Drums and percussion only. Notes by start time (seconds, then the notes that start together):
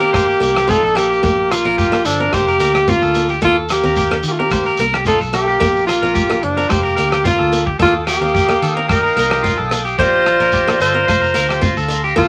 0.14 kick, cross-stick, shekere
0.30 shekere
0.42 closed hi-hat, shekere
0.57 cross-stick, shekere
0.69 kick, shekere
0.85 shekere
0.97 cross-stick, closed hi-hat, shekere
1.12 shekere
1.24 kick, shekere
1.51 cross-stick, closed hi-hat, shekere
1.66 shekere
1.78 kick, shekere
1.93 cross-stick, shekere
2.05 closed hi-hat, shekere
2.33 kick, cross-stick, shekere
2.47 shekere
2.60 closed hi-hat, shekere
2.74 cross-stick, shekere
2.88 kick, shekere
3.02 shekere
3.14 closed hi-hat, shekere
3.29 shekere
3.41 kick, shekere
3.69 cross-stick, closed hi-hat, shekere
3.84 shekere
3.96 kick, shekere
4.10 cross-stick, shekere
4.23 closed hi-hat, shekere
4.50 kick, cross-stick, shekere
4.65 shekere
4.77 closed hi-hat, shekere
4.92 cross-stick, shekere
5.05 kick, shekere
5.20 shekere
5.34 cross-stick, closed hi-hat, shekere
5.49 shekere
5.61 kick, shekere
5.76 shekere
5.88 cross-stick, closed hi-hat, shekere
6.03 shekere
6.15 kick, shekere
6.30 cross-stick, shekere
6.43 closed hi-hat
6.58 shekere
6.70 kick, cross-stick, shekere
6.85 shekere
6.97 closed hi-hat, shekere
7.11 cross-stick, shekere
7.25 kick, shekere
7.40 shekere
7.53 closed hi-hat, shekere
7.67 kick
7.80 kick, shekere
8.07 cross-stick, closed hi-hat, shekere
8.22 shekere
8.35 kick, shekere
8.49 cross-stick, shekere
8.62 closed hi-hat, shekere
8.89 kick, cross-stick, shekere
9.06 shekere
9.17 closed hi-hat, shekere
9.31 cross-stick, shekere
9.44 kick, shekere
9.71 cross-stick, closed hi-hat, shekere
9.86 shekere
9.99 kick, shekere
10.26 cross-stick, closed hi-hat
10.41 shekere
10.52 kick, shekere
10.68 cross-stick, shekere
10.81 closed hi-hat, shekere
11.08 kick, cross-stick, shekere
11.23 shekere
11.35 closed hi-hat, shekere
11.51 cross-stick, shekere
11.62 kick, shekere
11.77 shekere
11.90 closed hi-hat, shekere
12.05 shekere
12.18 kick, shekere